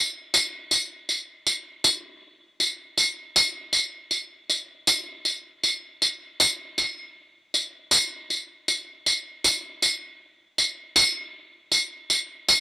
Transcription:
0.34 tambourine medium
0.71 tambourine soft
1.09 tambourine soft
1.46 tambourine soft
1.84 tambourine medium
2.60 tambourine soft
2.97 tambourine soft
3.36 tambourine medium
3.73 tambourine soft
4.11 tambourine soft
4.50 tambourine soft
4.87 tambourine medium
5.25 tambourine soft
5.64 tambourine soft
6.02 tambourine soft
6.40 tambourine medium
6.78 tambourine soft
7.54 tambourine soft
7.91 tambourine medium
8.30 tambourine soft
8.68 tambourine soft
9.06 tambourine soft
9.44 tambourine medium
9.82 tambourine soft
10.58 tambourine soft
10.96 tambourine medium
11.72 tambourine soft
12.10 tambourine soft
12.49 tambourine medium

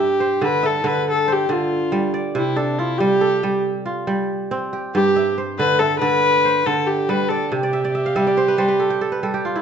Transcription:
0.00 2.11 G2 medium
0.00 0.11 G4 medium
0.00 0.46 G4 medium
0.00 0.23 A4 medium
0.00 0.63 E5 medium
0.20 1.27 C5 medium
0.41 0.83 D3 medium
0.41 0.67 B4 medium
0.63 0.88 A4 medium
0.63 1.67 E5 medium
0.84 1.48 D3 medium
0.84 1.07 B4 medium
1.10 1.34 A4 medium
1.28 2.47 C5 medium
1.32 1.53 G4 medium
1.49 2.41 D3 medium
1.49 2.15 F4 medium
1.92 2.41 G3 medium
2.14 3.25 D5 medium
2.35 4.69 C3 medium
2.35 2.58 E4 medium
2.56 2.80 D4 medium
2.56 3.21 A4 medium
2.78 2.99 E4 medium
2.78 3.85 F4 medium
2.98 3.42 G3 medium
2.98 3.64 G4 medium
3.21 4.53 A4 medium
3.43 4.06 G3 medium
3.86 5.22 F4 medium
4.07 4.99 G3 medium
4.51 6.31 C4 medium
4.73 6.14 G4 medium
4.94 7.29 G2 medium
4.94 5.34 G4 loud
5.16 5.80 E5 medium
5.38 6.45 C5 medium
5.58 6.00 D3 medium
5.58 5.81 B4 loud
5.79 5.99 A4 loud
5.79 6.84 E5 medium
5.99 6.65 D3 medium
5.99 6.68 B4 loud
6.45 7.64 C5 medium
6.66 7.57 D3 medium
6.66 6.88 A4 medium
6.87 7.10 G4 medium
7.09 7.57 G3 medium
7.09 7.30 B4 medium
7.29 7.53 A4 medium
7.29 7.63 D5 medium
7.52 9.62 C3 medium
7.52 9.62 G4 medium
7.63 7.84 D5 medium
7.73 7.94 E5 medium
7.84 8.27 D5 medium
7.95 8.15 E5 medium
8.06 9.06 F5 medium
8.16 8.57 G3 medium
8.16 9.19 E5 medium
8.27 9.38 D5 medium
8.37 8.58 C5 medium
8.48 8.68 B4 medium
8.58 9.22 G3 medium
8.58 9.18 C5 medium
8.68 9.12 B4 medium
8.79 9.01 A4 medium
8.90 9.33 G4 medium
9.01 9.23 A4 medium
9.12 9.62 B4 medium
9.23 9.62 G3 medium
9.23 9.62 A4 medium
9.34 9.62 G4 medium
9.45 9.62 F4 medium
9.56 9.62 E4 medium

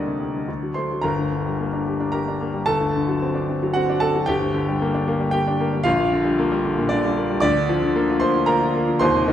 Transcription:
0.00 0.45 D2 medium
0.00 0.14 D3 medium
0.00 0.19 G3 medium
0.00 0.50 A#3 medium
0.00 0.72 D4 soft
0.00 0.50 D#4 medium
0.00 0.72 A#4 medium
0.00 0.75 D5 medium
0.00 0.51 D#5 medium
0.07 0.20 C3 soft
0.19 0.42 G3 soft
0.34 0.48 D3 soft
0.48 1.03 D2 medium
0.63 0.85 F#3 soft
0.74 0.99 A3 soft
0.74 1.02 C5 medium
0.74 1.03 C6 medium
0.91 1.05 F#3 medium
1.02 2.63 G1 medium
1.02 2.08 A#4 medium
1.02 2.10 A#5 loud
1.19 1.40 D2 medium
1.32 1.54 D3 medium
1.46 1.67 G3 medium
1.60 1.81 A#3 medium
1.73 1.94 D4 medium
1.87 2.08 G4 medium
2.00 2.21 D4 medium
2.12 2.35 G4 medium
2.12 2.64 A#4 medium
2.12 2.67 A#5 loud
2.28 2.49 D4 medium
2.41 2.62 A#3 medium
2.54 2.67 G3 medium
2.66 4.25 G1 medium
2.66 3.71 A4 medium
2.66 3.75 A5 loud
2.81 3.02 D2 medium
2.95 3.16 D3 medium
3.08 3.30 F#3 medium
3.22 3.43 C4 medium
3.35 3.57 D4 medium
3.49 3.71 C4 medium
3.63 3.84 F#3 medium
3.74 3.97 C4 medium
3.74 4.00 F#4 medium
3.74 4.02 F#5 loud
3.90 4.11 D4 medium
4.00 4.24 C4 medium
4.00 4.26 A4 medium
4.00 4.28 A5 loud
4.15 4.29 F#3 medium
4.26 5.82 G1 loud
4.26 5.29 G4 loud
4.26 5.30 G5 loud
4.41 4.62 D2 medium
4.54 4.75 D3 medium
4.68 4.89 G3 medium
4.82 5.02 A#3 medium
4.94 5.15 D4 medium
5.08 5.28 A#3 medium
5.20 5.41 G3 medium
5.31 5.55 A#3 medium
5.31 5.82 G4 medium
5.31 5.85 G5 loud
5.47 5.68 D4 medium
5.60 5.81 A#3 medium
5.73 5.86 G3 medium
5.84 7.39 A#1 loud
5.84 6.87 F4 loud
5.84 6.90 F5 loud
6.00 6.20 A#2 medium
6.13 6.34 D3 medium
6.25 6.46 G3 medium
6.39 6.60 A#3 medium
6.52 6.73 G3 medium
6.65 6.86 D3 medium
6.78 6.99 A#2 medium
6.89 7.12 D3 medium
6.89 7.15 D4 medium
6.89 7.16 D5 loud
7.04 7.25 G3 medium
7.17 7.38 A#3 medium
7.30 7.43 G3 medium
7.40 8.98 D2 loud
7.40 8.17 D5 loud
7.40 8.21 D6 loud
7.56 7.77 D3 medium
7.69 7.90 F3 loud
7.82 8.04 D3 medium
7.96 8.17 A#3 medium
8.10 8.31 F4 medium
8.20 8.43 A#3 medium
8.20 8.46 C5 loud
8.20 8.47 C6 loud
8.36 8.57 F4 medium
8.46 8.70 A#3 medium
8.46 8.97 A#4 loud
8.46 9.01 A#5 loud
8.62 8.83 F4 medium
8.75 8.96 A#3 medium
8.88 9.02 F3 medium
8.99 9.33 D#1 loud
8.99 9.33 D#2 loud
8.99 9.33 C5 loud
8.99 9.33 C6 loud
9.15 9.33 C3 medium
9.27 9.33 D#3 medium

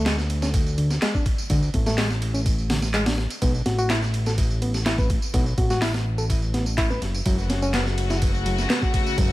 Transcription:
0.00 0.99 D2 medium
0.06 0.16 G#3 loud
0.06 snare loud
0.06 clap loud
0.06 ride medium
0.06 tambourine medium
0.18 snare soft
0.18 tambourine soft
0.30 ride medium
0.42 0.48 C#4 medium
0.42 snare soft
0.42 tambourine medium
0.54 kick loud
0.54 ride medium
0.54 tambourine medium
0.66 tambourine soft
0.78 0.88 D3 medium
0.78 ride medium
0.90 snare soft
0.90 tambourine medium
1.02 1.12 G#3 loud
1.02 snare loud
1.02 clap loud
1.02 ride medium
1.02 tambourine medium
1.14 1.24 D4 medium
1.14 kick loud
1.14 tambourine soft
1.14 high conga medium
1.26 kick loud
1.26 ride medium
1.38 tambourine medium
1.50 1.70 D2 loud
1.50 1.60 D3 medium
1.50 kick loud
1.50 ride medium
1.50 tambourine medium
1.50 low conga medium
1.62 tambourine soft
1.74 3.27 A1 medium
1.74 1.85 A3 medium
1.74 kick loud
1.74 ride medium
1.74 high conga loud
1.86 1.97 A3 medium
1.86 snare soft
1.86 tambourine medium
1.86 low conga medium
1.98 2.08 G#3 loud
1.98 snare loud
1.98 clap loud
1.98 open hi-hat medium
1.98 tambourine medium
2.10 snare medium
2.10 tambourine soft
2.22 ride medium
2.34 2.40 C#4 medium
2.34 tambourine medium
2.46 kick loud
2.46 ride medium
2.46 tambourine medium
2.58 tambourine soft
2.70 2.80 D3 medium
2.70 snare loud
2.70 open hi-hat medium
2.82 snare medium
2.82 tambourine medium
2.94 3.04 G#3 loud
2.94 clap loud
2.94 ride medium
2.94 tambourine medium
3.06 3.16 D4 medium
3.06 snare loud
3.06 open hi-hat medium
3.06 tambourine soft
3.06 high conga medium
3.18 snare medium
3.30 ride medium
3.30 tambourine medium
3.42 3.62 B1 loud
3.42 3.52 B3 medium
3.42 kick loud
3.42 ride medium
3.42 tambourine medium
3.42 low conga medium
3.54 tambourine soft
3.66 5.19 A1 medium
3.66 3.77 F#4 medium
3.66 snare soft
3.66 ride medium
3.66 high conga loud
3.78 3.89 F#4 medium
3.78 tambourine medium
3.90 4.00 E4 loud
3.90 snare loud
3.90 clap loud
3.90 ride medium
3.90 tambourine medium
4.02 snare soft
4.02 tambourine soft
4.14 ride medium
4.26 4.32 A4 medium
4.26 snare soft
4.26 tambourine medium
4.38 kick loud
4.38 ride medium
4.38 tambourine medium
4.50 tambourine soft
4.62 4.72 B3 medium
4.62 ride medium
4.74 snare soft
4.74 tambourine medium
4.86 4.96 E4 loud
4.86 snare loud
4.86 clap loud
4.86 ride medium
4.86 tambourine medium
4.98 5.08 B4 medium
4.98 kick loud
4.98 tambourine soft
4.98 high conga medium
5.10 kick loud
5.10 ride medium
5.22 tambourine medium
5.34 5.54 B1 loud
5.34 5.44 B3 medium
5.34 kick loud
5.34 ride medium
5.34 tambourine medium
5.34 low conga medium
5.46 tambourine soft
5.58 6.53 A1 medium
5.58 5.69 F#4 medium
5.58 kick loud
5.58 ride medium
5.58 high conga loud
5.70 5.81 F#4 medium
5.70 snare soft
5.70 tambourine medium
5.70 low conga medium
5.82 5.92 E4 loud
5.82 snare loud
5.82 clap loud
5.82 open hi-hat medium
5.82 tambourine medium
5.94 snare medium
5.94 tambourine soft
6.18 6.24 A4 medium
6.18 tambourine medium
6.30 kick medium
6.30 ride medium
6.30 tambourine medium
6.42 tambourine soft
6.54 6.99 A1 medium
6.54 6.64 B3 medium
6.54 snare soft
6.54 ride medium
6.66 tambourine medium
6.78 6.88 E4 loud
6.78 kick loud
6.78 clap loud
6.78 ride medium
6.90 7.00 B4 medium
6.90 tambourine soft
6.90 high conga medium
7.02 7.22 F#1 medium
7.02 snare soft
7.02 ride medium
7.14 tambourine medium
7.26 8.67 F#1 loud
7.26 9.32 C#3 medium
7.26 7.36 F#3 medium
7.26 9.32 A3 medium
7.26 9.32 F#4 loud
7.26 kick loud
7.26 ride medium
7.26 tambourine medium
7.26 low conga medium
7.38 tambourine soft
7.50 7.61 C#4 medium
7.50 snare soft
7.50 ride medium
7.50 high conga medium
7.62 7.73 C#4 medium
7.62 tambourine medium
7.74 7.84 B3 loud
7.74 snare loud
7.74 clap loud
7.74 ride medium
7.74 tambourine soft
7.86 snare soft
7.86 tambourine soft
7.98 ride medium
8.10 8.16 E4 medium
8.10 snare soft
8.10 tambourine medium
8.22 kick loud
8.22 ride medium
8.22 tambourine medium
8.34 tambourine soft
8.46 8.56 F#3 medium
8.46 ride medium
8.58 snare soft
8.58 tambourine medium
8.70 8.80 B3 loud
8.70 snare loud
8.70 clap loud
8.70 ride medium
8.70 tambourine medium
8.81 8.92 F#4 medium
8.81 kick loud
8.81 tambourine soft
8.81 high conga medium
8.94 kick loud
8.94 ride medium
9.06 tambourine medium
9.18 9.32 F#1 loud
9.18 9.28 F#3 medium
9.18 kick loud
9.18 ride medium
9.18 tambourine medium
9.18 low conga medium

